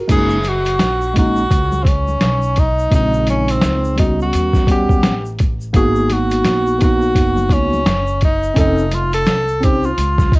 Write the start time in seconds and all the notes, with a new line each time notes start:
Already playing: F#4 A#4
0.08 F#1 G#3 A#3 C#4 D#4 G#4, kick, closed hi-hat, crash, shaker
0.30 shaker
0.44 closed hi-hat, high conga, shaker
0.48 F#4
0.65 closed hi-hat, shaker
0.79 A#1, snare, closed hi-hat, shaker
1.02 shaker
1.14 G#3 A#3 C#4 D#4, kick, closed hi-hat, low conga, shaker
1.19 F#4
1.36 shaker
1.51 C#2, kick, closed hi-hat, shaker
1.72 high conga, shaker
1.83 C4, kick, closed hi-hat, shaker
1.88 C#4
2.08 high conga, shaker
2.21 B1, snare, closed hi-hat, shaker
2.42 shaker
2.56 D#4, kick, closed hi-hat, low conga, shaker
2.79 shaker
2.91 A#1 C#3 G#3 C4, kick, closed hi-hat, shaker
2.95 D#4
3.13 shaker
3.27 C#4, closed hi-hat, high conga, shaker
3.48 C4, closed hi-hat, shaker
3.62 C#2, snare, closed hi-hat, shaker
3.84 shaker
3.96 G3 B3 C#4 D#4 F#4, kick, closed hi-hat, low conga, shaker
4.20 F#4, shaker
4.33 D#2, closed hi-hat, shaker
4.53 kick, snare, high conga, shaker
4.67 G3 B3 C#4, kick, closed hi-hat, shaker
4.71 G4 F#5
4.89 kick, high conga, shaker
5.03 A1, snare, closed hi-hat, shaker
5.26 shaker
5.39 kick, closed hi-hat, low conga, shaker
5.61 shaker
5.73 G#1 A#3 B3 D#4 F#4 G#4, kick, closed hi-hat, shaker
5.96 shaker
6.10 F#4, closed hi-hat, high conga, shaker
6.31 closed hi-hat, shaker
6.45 A#1, snare, closed hi-hat, shaker
6.67 shaker
6.78 A#3 B3 D#4 F#4, kick, closed hi-hat, low conga, shaker
6.84 F#4
7.02 shaker
7.15 F#1, kick, closed hi-hat, shaker
7.37 high conga, shaker
7.50 C#2 C#4, kick, closed hi-hat, shaker
7.73 high conga, shaker
7.86 F#1, snare, closed hi-hat, shaker
8.07 shaker
8.21 D#4, kick, closed hi-hat, low conga, shaker
8.43 shaker
8.54 F1 C4 C#4 D#4 A4, kick, closed hi-hat, shaker
8.60 D#4
8.78 shaker
8.91 F4, closed hi-hat, high conga, shaker
9.13 A4, closed hi-hat, shaker
9.27 snare, closed hi-hat, shaker
9.48 shaker
9.60 C4 C#4 D#4 G4 C5, kick, closed hi-hat, low conga, shaker
9.84 F4, shaker
9.98 C#2, closed hi-hat, shaker
10.18 kick, snare, high conga, shaker
10.32 D#4, kick, closed hi-hat, shaker